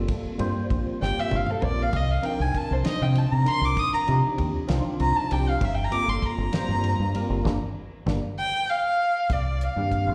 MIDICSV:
0, 0, Header, 1, 6, 480
1, 0, Start_track
1, 0, Tempo, 614754
1, 68, Time_signature, 6, 3, 24, 8
1, 7924, End_track
2, 0, Start_track
2, 0, Title_t, "Violin"
2, 0, Program_c, 0, 40
2, 798, Note_on_c, 0, 79, 95
2, 933, Note_on_c, 0, 76, 96
2, 945, Note_off_c, 0, 79, 0
2, 1060, Note_on_c, 0, 77, 90
2, 1072, Note_off_c, 0, 76, 0
2, 1174, Note_on_c, 0, 69, 75
2, 1186, Note_off_c, 0, 77, 0
2, 1278, Note_on_c, 0, 74, 93
2, 1289, Note_off_c, 0, 69, 0
2, 1423, Note_on_c, 0, 77, 103
2, 1435, Note_off_c, 0, 74, 0
2, 1532, Note_on_c, 0, 75, 91
2, 1544, Note_off_c, 0, 77, 0
2, 1648, Note_on_c, 0, 77, 85
2, 1659, Note_off_c, 0, 75, 0
2, 1754, Note_on_c, 0, 79, 96
2, 1766, Note_off_c, 0, 77, 0
2, 1885, Note_on_c, 0, 80, 86
2, 1897, Note_off_c, 0, 79, 0
2, 2010, Note_on_c, 0, 81, 95
2, 2021, Note_off_c, 0, 80, 0
2, 2128, Note_on_c, 0, 72, 81
2, 2140, Note_off_c, 0, 81, 0
2, 2226, Note_on_c, 0, 75, 100
2, 2238, Note_off_c, 0, 72, 0
2, 2359, Note_on_c, 0, 79, 89
2, 2371, Note_off_c, 0, 75, 0
2, 2484, Note_on_c, 0, 81, 83
2, 2496, Note_off_c, 0, 79, 0
2, 2599, Note_on_c, 0, 82, 98
2, 2611, Note_off_c, 0, 81, 0
2, 2719, Note_on_c, 0, 84, 116
2, 2731, Note_off_c, 0, 82, 0
2, 2849, Note_on_c, 0, 86, 97
2, 2861, Note_off_c, 0, 84, 0
2, 2960, Note_on_c, 0, 87, 111
2, 2972, Note_off_c, 0, 86, 0
2, 3070, Note_off_c, 0, 87, 0
2, 3075, Note_on_c, 0, 82, 97
2, 3145, Note_off_c, 0, 82, 0
2, 3915, Note_on_c, 0, 82, 87
2, 4032, Note_on_c, 0, 81, 89
2, 4043, Note_off_c, 0, 82, 0
2, 4157, Note_on_c, 0, 79, 97
2, 4168, Note_off_c, 0, 81, 0
2, 4285, Note_on_c, 0, 77, 88
2, 4297, Note_off_c, 0, 79, 0
2, 4405, Note_on_c, 0, 76, 91
2, 4417, Note_off_c, 0, 77, 0
2, 4486, Note_on_c, 0, 79, 89
2, 4498, Note_off_c, 0, 76, 0
2, 4564, Note_on_c, 0, 82, 91
2, 4576, Note_off_c, 0, 79, 0
2, 4627, Note_on_c, 0, 86, 120
2, 4639, Note_off_c, 0, 82, 0
2, 4758, Note_on_c, 0, 84, 99
2, 4770, Note_off_c, 0, 86, 0
2, 4885, Note_on_c, 0, 82, 100
2, 4896, Note_off_c, 0, 84, 0
2, 5836, Note_off_c, 0, 82, 0
2, 6548, Note_on_c, 0, 79, 119
2, 6792, Note_on_c, 0, 77, 113
2, 6804, Note_off_c, 0, 79, 0
2, 7284, Note_on_c, 0, 74, 95
2, 7296, Note_off_c, 0, 77, 0
2, 7524, Note_on_c, 0, 77, 94
2, 7536, Note_off_c, 0, 74, 0
2, 7924, Note_off_c, 0, 77, 0
2, 7924, End_track
3, 0, Start_track
3, 0, Title_t, "Tine electric piano"
3, 0, Program_c, 1, 4
3, 0, Note_on_c, 1, 55, 75
3, 0, Note_on_c, 1, 58, 72
3, 0, Note_on_c, 1, 60, 72
3, 0, Note_on_c, 1, 65, 74
3, 0, Note_on_c, 1, 69, 83
3, 276, Note_off_c, 1, 55, 0
3, 276, Note_off_c, 1, 58, 0
3, 277, Note_off_c, 1, 60, 0
3, 280, Note_off_c, 1, 69, 0
3, 281, Note_off_c, 1, 65, 0
3, 300, Note_on_c, 1, 55, 91
3, 301, Note_on_c, 1, 58, 85
3, 304, Note_on_c, 1, 60, 81
3, 310, Note_on_c, 1, 65, 83
3, 314, Note_on_c, 1, 72, 110
3, 756, Note_off_c, 1, 55, 0
3, 757, Note_off_c, 1, 58, 0
3, 758, Note_off_c, 1, 60, 0
3, 761, Note_off_c, 1, 65, 0
3, 763, Note_off_c, 1, 72, 0
3, 785, Note_on_c, 1, 55, 79
3, 789, Note_on_c, 1, 60, 74
3, 790, Note_on_c, 1, 58, 71
3, 798, Note_on_c, 1, 65, 74
3, 800, Note_on_c, 1, 67, 84
3, 1239, Note_off_c, 1, 55, 0
3, 1241, Note_off_c, 1, 60, 0
3, 1242, Note_off_c, 1, 58, 0
3, 1245, Note_off_c, 1, 65, 0
3, 1246, Note_off_c, 1, 67, 0
3, 1260, Note_on_c, 1, 55, 78
3, 1261, Note_on_c, 1, 58, 64
3, 1267, Note_on_c, 1, 60, 72
3, 1269, Note_on_c, 1, 70, 82
3, 1270, Note_on_c, 1, 65, 66
3, 1504, Note_off_c, 1, 55, 0
3, 1505, Note_off_c, 1, 58, 0
3, 1507, Note_off_c, 1, 60, 0
3, 1509, Note_off_c, 1, 65, 0
3, 1509, Note_off_c, 1, 70, 0
3, 1736, Note_on_c, 1, 53, 75
3, 1737, Note_on_c, 1, 60, 70
3, 1740, Note_on_c, 1, 62, 77
3, 1743, Note_on_c, 1, 70, 94
3, 1744, Note_on_c, 1, 63, 73
3, 2194, Note_off_c, 1, 53, 0
3, 2195, Note_off_c, 1, 60, 0
3, 2196, Note_off_c, 1, 62, 0
3, 2198, Note_off_c, 1, 63, 0
3, 2198, Note_off_c, 1, 70, 0
3, 2211, Note_on_c, 1, 53, 79
3, 2212, Note_on_c, 1, 60, 66
3, 2215, Note_on_c, 1, 62, 70
3, 2220, Note_on_c, 1, 63, 75
3, 2220, Note_on_c, 1, 72, 81
3, 2672, Note_off_c, 1, 53, 0
3, 2672, Note_off_c, 1, 60, 0
3, 2673, Note_off_c, 1, 62, 0
3, 2676, Note_off_c, 1, 63, 0
3, 2676, Note_off_c, 1, 72, 0
3, 2689, Note_on_c, 1, 53, 62
3, 2690, Note_on_c, 1, 62, 61
3, 2694, Note_on_c, 1, 60, 57
3, 2699, Note_on_c, 1, 63, 57
3, 2699, Note_on_c, 1, 70, 66
3, 3151, Note_off_c, 1, 53, 0
3, 3151, Note_off_c, 1, 62, 0
3, 3153, Note_off_c, 1, 60, 0
3, 3156, Note_off_c, 1, 63, 0
3, 3156, Note_off_c, 1, 70, 0
3, 3175, Note_on_c, 1, 53, 82
3, 3181, Note_on_c, 1, 62, 74
3, 3182, Note_on_c, 1, 60, 76
3, 3183, Note_on_c, 1, 63, 73
3, 3186, Note_on_c, 1, 67, 84
3, 3634, Note_off_c, 1, 53, 0
3, 3637, Note_off_c, 1, 60, 0
3, 3637, Note_off_c, 1, 62, 0
3, 3638, Note_off_c, 1, 63, 0
3, 3639, Note_off_c, 1, 67, 0
3, 3650, Note_on_c, 1, 53, 99
3, 3655, Note_on_c, 1, 60, 92
3, 3656, Note_on_c, 1, 62, 85
3, 3661, Note_on_c, 1, 65, 108
3, 3662, Note_on_c, 1, 63, 88
3, 4111, Note_off_c, 1, 53, 0
3, 4114, Note_off_c, 1, 60, 0
3, 4114, Note_off_c, 1, 62, 0
3, 4116, Note_off_c, 1, 65, 0
3, 4117, Note_off_c, 1, 63, 0
3, 4136, Note_on_c, 1, 53, 78
3, 4141, Note_on_c, 1, 60, 68
3, 4141, Note_on_c, 1, 62, 71
3, 4144, Note_on_c, 1, 63, 73
3, 4149, Note_on_c, 1, 67, 82
3, 4382, Note_off_c, 1, 53, 0
3, 4384, Note_off_c, 1, 62, 0
3, 4385, Note_off_c, 1, 60, 0
3, 4386, Note_off_c, 1, 63, 0
3, 4389, Note_off_c, 1, 67, 0
3, 4610, Note_on_c, 1, 55, 82
3, 4616, Note_on_c, 1, 58, 79
3, 4617, Note_on_c, 1, 65, 79
3, 4618, Note_on_c, 1, 60, 77
3, 4624, Note_on_c, 1, 69, 94
3, 5071, Note_off_c, 1, 55, 0
3, 5074, Note_off_c, 1, 58, 0
3, 5075, Note_off_c, 1, 60, 0
3, 5075, Note_off_c, 1, 65, 0
3, 5078, Note_off_c, 1, 69, 0
3, 5094, Note_on_c, 1, 55, 84
3, 5099, Note_on_c, 1, 58, 77
3, 5101, Note_on_c, 1, 65, 69
3, 5105, Note_on_c, 1, 60, 75
3, 5108, Note_on_c, 1, 72, 92
3, 5553, Note_off_c, 1, 55, 0
3, 5556, Note_off_c, 1, 58, 0
3, 5557, Note_off_c, 1, 65, 0
3, 5559, Note_off_c, 1, 60, 0
3, 5560, Note_off_c, 1, 72, 0
3, 5578, Note_on_c, 1, 55, 79
3, 5582, Note_on_c, 1, 58, 78
3, 5585, Note_on_c, 1, 60, 74
3, 5585, Note_on_c, 1, 65, 80
3, 5589, Note_on_c, 1, 70, 92
3, 5802, Note_off_c, 1, 55, 0
3, 5803, Note_off_c, 1, 58, 0
3, 5812, Note_on_c, 1, 55, 91
3, 5812, Note_on_c, 1, 58, 105
3, 5813, Note_on_c, 1, 62, 100
3, 5826, Note_off_c, 1, 60, 0
3, 5826, Note_off_c, 1, 65, 0
3, 5829, Note_off_c, 1, 70, 0
3, 5895, Note_off_c, 1, 55, 0
3, 5895, Note_off_c, 1, 58, 0
3, 5896, Note_off_c, 1, 62, 0
3, 6303, Note_on_c, 1, 55, 101
3, 6304, Note_on_c, 1, 58, 96
3, 6306, Note_on_c, 1, 62, 94
3, 6382, Note_off_c, 1, 55, 0
3, 6383, Note_off_c, 1, 58, 0
3, 6383, Note_off_c, 1, 62, 0
3, 7621, Note_on_c, 1, 51, 65
3, 7622, Note_on_c, 1, 58, 62
3, 7631, Note_on_c, 1, 60, 67
3, 7633, Note_on_c, 1, 62, 71
3, 7636, Note_on_c, 1, 67, 79
3, 7924, Note_off_c, 1, 51, 0
3, 7924, Note_off_c, 1, 58, 0
3, 7924, Note_off_c, 1, 60, 0
3, 7924, Note_off_c, 1, 62, 0
3, 7924, Note_off_c, 1, 67, 0
3, 7924, End_track
4, 0, Start_track
4, 0, Title_t, "Fingered electric bass"
4, 0, Program_c, 2, 33
4, 310, Note_on_c, 2, 43, 92
4, 405, Note_off_c, 2, 43, 0
4, 551, Note_on_c, 2, 34, 99
4, 645, Note_off_c, 2, 34, 0
4, 796, Note_on_c, 2, 31, 87
4, 888, Note_off_c, 2, 31, 0
4, 1035, Note_on_c, 2, 31, 89
4, 1128, Note_off_c, 2, 31, 0
4, 1272, Note_on_c, 2, 34, 85
4, 1462, Note_off_c, 2, 34, 0
4, 1507, Note_on_c, 2, 36, 92
4, 1699, Note_off_c, 2, 36, 0
4, 1874, Note_on_c, 2, 36, 83
4, 1967, Note_off_c, 2, 36, 0
4, 2114, Note_on_c, 2, 36, 91
4, 2207, Note_off_c, 2, 36, 0
4, 2354, Note_on_c, 2, 48, 85
4, 2542, Note_off_c, 2, 48, 0
4, 2593, Note_on_c, 2, 48, 71
4, 2687, Note_off_c, 2, 48, 0
4, 2821, Note_on_c, 2, 36, 81
4, 2919, Note_off_c, 2, 36, 0
4, 3189, Note_on_c, 2, 48, 97
4, 3284, Note_off_c, 2, 48, 0
4, 3421, Note_on_c, 2, 39, 102
4, 3519, Note_off_c, 2, 39, 0
4, 3664, Note_on_c, 2, 36, 85
4, 3761, Note_off_c, 2, 36, 0
4, 3904, Note_on_c, 2, 36, 99
4, 4001, Note_off_c, 2, 36, 0
4, 4151, Note_on_c, 2, 36, 88
4, 4341, Note_off_c, 2, 36, 0
4, 4382, Note_on_c, 2, 31, 97
4, 4575, Note_off_c, 2, 31, 0
4, 4746, Note_on_c, 2, 31, 88
4, 4842, Note_off_c, 2, 31, 0
4, 4981, Note_on_c, 2, 31, 91
4, 5079, Note_off_c, 2, 31, 0
4, 5221, Note_on_c, 2, 43, 93
4, 5415, Note_off_c, 2, 43, 0
4, 5464, Note_on_c, 2, 43, 81
4, 5561, Note_off_c, 2, 43, 0
4, 5699, Note_on_c, 2, 31, 83
4, 5798, Note_off_c, 2, 31, 0
4, 5824, Note_on_c, 2, 31, 95
4, 5915, Note_off_c, 2, 31, 0
4, 6297, Note_on_c, 2, 31, 114
4, 6391, Note_off_c, 2, 31, 0
4, 7263, Note_on_c, 2, 36, 88
4, 7552, Note_off_c, 2, 36, 0
4, 7623, Note_on_c, 2, 43, 73
4, 7866, Note_on_c, 2, 36, 85
4, 7878, Note_off_c, 2, 43, 0
4, 7924, Note_off_c, 2, 36, 0
4, 7924, End_track
5, 0, Start_track
5, 0, Title_t, "Muted fingered electric bass strokes"
5, 197, Note_on_c, 9, 29, 39
5, 275, Note_off_c, 9, 29, 0
5, 912, Note_on_c, 9, 29, 39
5, 990, Note_off_c, 9, 29, 0
5, 2715, Note_on_c, 9, 29, 37
5, 2793, Note_off_c, 9, 29, 0
5, 3070, Note_on_c, 9, 29, 40
5, 3148, Note_off_c, 9, 29, 0
5, 5583, Note_on_c, 9, 29, 38
5, 5661, Note_off_c, 9, 29, 0
5, 7924, End_track
6, 0, Start_track
6, 0, Title_t, "Drums"
6, 66, Note_on_c, 9, 51, 84
6, 67, Note_on_c, 9, 36, 115
6, 144, Note_off_c, 9, 51, 0
6, 145, Note_off_c, 9, 36, 0
6, 306, Note_on_c, 9, 51, 66
6, 384, Note_off_c, 9, 51, 0
6, 549, Note_on_c, 9, 36, 75
6, 551, Note_on_c, 9, 51, 58
6, 628, Note_off_c, 9, 36, 0
6, 629, Note_off_c, 9, 51, 0
6, 800, Note_on_c, 9, 38, 59
6, 878, Note_off_c, 9, 38, 0
6, 1026, Note_on_c, 9, 48, 77
6, 1104, Note_off_c, 9, 48, 0
6, 1144, Note_on_c, 9, 47, 73
6, 1222, Note_off_c, 9, 47, 0
6, 1267, Note_on_c, 9, 45, 98
6, 1345, Note_off_c, 9, 45, 0
6, 1506, Note_on_c, 9, 51, 88
6, 1509, Note_on_c, 9, 36, 109
6, 1584, Note_off_c, 9, 51, 0
6, 1587, Note_off_c, 9, 36, 0
6, 1743, Note_on_c, 9, 51, 61
6, 1821, Note_off_c, 9, 51, 0
6, 1987, Note_on_c, 9, 36, 69
6, 1988, Note_on_c, 9, 51, 60
6, 2065, Note_off_c, 9, 36, 0
6, 2066, Note_off_c, 9, 51, 0
6, 2222, Note_on_c, 9, 51, 79
6, 2231, Note_on_c, 9, 38, 104
6, 2300, Note_off_c, 9, 51, 0
6, 2309, Note_off_c, 9, 38, 0
6, 2463, Note_on_c, 9, 51, 58
6, 2541, Note_off_c, 9, 51, 0
6, 2703, Note_on_c, 9, 51, 61
6, 2781, Note_off_c, 9, 51, 0
6, 2943, Note_on_c, 9, 36, 111
6, 2944, Note_on_c, 9, 51, 78
6, 3021, Note_off_c, 9, 36, 0
6, 3022, Note_off_c, 9, 51, 0
6, 3182, Note_on_c, 9, 51, 58
6, 3260, Note_off_c, 9, 51, 0
6, 3423, Note_on_c, 9, 36, 70
6, 3423, Note_on_c, 9, 51, 60
6, 3501, Note_off_c, 9, 36, 0
6, 3501, Note_off_c, 9, 51, 0
6, 3658, Note_on_c, 9, 51, 76
6, 3667, Note_on_c, 9, 38, 101
6, 3736, Note_off_c, 9, 51, 0
6, 3745, Note_off_c, 9, 38, 0
6, 3901, Note_on_c, 9, 51, 57
6, 3980, Note_off_c, 9, 51, 0
6, 4145, Note_on_c, 9, 51, 67
6, 4224, Note_off_c, 9, 51, 0
6, 4382, Note_on_c, 9, 36, 118
6, 4382, Note_on_c, 9, 51, 93
6, 4460, Note_off_c, 9, 36, 0
6, 4460, Note_off_c, 9, 51, 0
6, 4621, Note_on_c, 9, 51, 60
6, 4699, Note_off_c, 9, 51, 0
6, 4860, Note_on_c, 9, 36, 72
6, 4863, Note_on_c, 9, 51, 63
6, 4938, Note_off_c, 9, 36, 0
6, 4941, Note_off_c, 9, 51, 0
6, 5096, Note_on_c, 9, 51, 85
6, 5106, Note_on_c, 9, 38, 110
6, 5174, Note_off_c, 9, 51, 0
6, 5184, Note_off_c, 9, 38, 0
6, 5339, Note_on_c, 9, 51, 61
6, 5417, Note_off_c, 9, 51, 0
6, 5580, Note_on_c, 9, 51, 64
6, 5658, Note_off_c, 9, 51, 0
6, 5820, Note_on_c, 9, 36, 90
6, 5827, Note_on_c, 9, 38, 98
6, 5898, Note_off_c, 9, 36, 0
6, 5905, Note_off_c, 9, 38, 0
6, 6299, Note_on_c, 9, 36, 86
6, 6308, Note_on_c, 9, 38, 93
6, 6377, Note_off_c, 9, 36, 0
6, 6386, Note_off_c, 9, 38, 0
6, 7260, Note_on_c, 9, 36, 97
6, 7260, Note_on_c, 9, 42, 78
6, 7338, Note_off_c, 9, 36, 0
6, 7338, Note_off_c, 9, 42, 0
6, 7504, Note_on_c, 9, 42, 57
6, 7582, Note_off_c, 9, 42, 0
6, 7742, Note_on_c, 9, 36, 67
6, 7744, Note_on_c, 9, 42, 56
6, 7820, Note_off_c, 9, 36, 0
6, 7822, Note_off_c, 9, 42, 0
6, 7924, End_track
0, 0, End_of_file